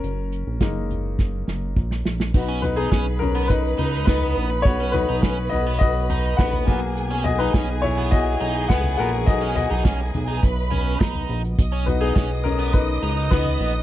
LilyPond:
<<
  \new Staff \with { instrumentName = "Violin section" } { \time 4/4 \key b \major \tempo 4 = 104 r1 | <b' b''>1~ | <b' b''>2.~ <b' b''>8 <gis' gis''>8~ | <gis' gis''>1~ |
<gis' gis''>2 <b' b''>4. r8 | <dis'' dis'''>1 | }
  \new Staff \with { instrumentName = "Upright piano" } { \time 4/4 \key b \major << { <cis' ais'>2.~ <cis' ais'>8 r8 | r8 <dis' b'>16 <b gis'>8. <cis' ais'>8 <dis' b'>4 <dis' b'>4 | <fis' cis''>8 b'4 <fis' dis''>8 <fis' dis''>4 <b' fis''>8. r16 | r8 <fis' dis''>16 <dis' b'>8. <e' cis''>8 <fis' dis''>4 <b' fis''>8 <ais' fis''>8 |
<fis' dis''>8 <fis' dis''>2. r8 | r8 b'16 <b gis'>8. <cis' ais'>8 <dis' b'>4 <dis' b'>4 | } \\ { r4 <gis ais dis'>4. r4. | <b dis' fis'>4. r2 r8 | r8 <b dis' fis'>4. r4 <b dis' fis'>8 <ais b fis'>8 | r2. r8 <gis b fis'>8~ |
<gis b fis'>2.~ <gis b fis'>8 r8 | r8 <b dis' fis'>2.~ <b dis' fis'>8 | } >> }
  \new Staff \with { instrumentName = "Overdriven electric guitar" } { \time 4/4 \key b \major r1 | r16 cis'16 r16 dis'16 cis'16 r8 b16 r8 dis'8 b8. r16 | r16 cis'16 r16 dis'16 cis'16 r8 b16 r8 dis'8 b8. r16 | r16 cis'16 r16 dis'16 cis'16 r8 b16 r8 dis'8 b8. r16 |
r16 cis'16 r16 dis'16 cis'16 r8 dis'16 r8 cis'8 dis'8. r16 | r16 cis'16 r16 dis'16 cis'16 r8 b16 r8 dis'8 b8. r16 | }
  \new Staff \with { instrumentName = "Analog synth bass" } { \clef bass \time 4/4 \key b \major fis,,8. ais,,16 fis,,4. fis,,8 ais,,8 ais,,8 | b,,4 b,,4. cis,8 cis,8 ais,,8 | b,,8. b,,8. b,,8 b,,4 ais,,8 b,,8~ | b,,4 b,,4. b,,8 cis,8 ais,,8 |
b,,8. b,,8. b,,8 b,,4 b,,8 ais,,8 | b,,4 b,,4. cis,8 cis,8 ais,,8 | }
  \new DrumStaff \with { instrumentName = "Drums" } \drummode { \time 4/4 hh8 hh8 <hh bd sn>8 <hh tomfh>8 <bd sn>8 sn8 bd16 sn16 sn16 sn16 | <cymc bd>8 <hh tomfh>8 <hh bd sn>8 <hh tomfh>8 <hh bd>8 <hh tomfh>16 hh16 <hh bd sn>16 tomfh16 hh8 | <hh bd>8 <hh tomfh>8 <hh bd sn>8 <hh tomfh>8 <hh bd>8 <hh tomfh>16 hh16 <hh bd sn>16 tomfh16 <hh bd>8 | hh8 <hh tomfh>8 <hh bd sn>8 <hh tomfh>8 <hh bd>8 hh8 <hh bd sn>16 tomfh16 hh8 |
<hh bd>8 <hh tomfh>8 <hh bd sn>8 <hh tomfh>8 <hh bd>8 <hh tomfh>8 <hh bd sn>16 tomfh16 hh16 hh16 | <hh bd>8 <hh tomfh>8 <hh bd sn>8 <hh tomfh>8 <hh bd>8 hh8 <hh bd sn>16 tomfh16 hh8 | }
>>